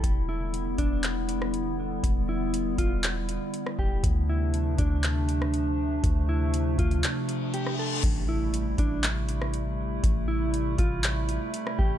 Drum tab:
CC |----------------|----------------|----------------|----------------|
HH |x---x-x-x-x-x---|x---x-x-x-x-x---|x---x-x-x-x-x---|x---x-xxx-x-x---|
CP |--------x-------|--------x-------|--------x-------|--------x-------|
SD |-----------r----|-------------r--|-----------r----|-------------r--|
BD |o-----o---------|o-----o-------o-|o-----o---------|o-----o---------|

CC |x---------------|----------------|
HH |x---x-x-x-x-x---|x---x-x-x-x-x---|
CP |--------x-------|--------x-------|
SD |-----------r----|-------------r--|
BD |o-----o---------|o-----o-------o-|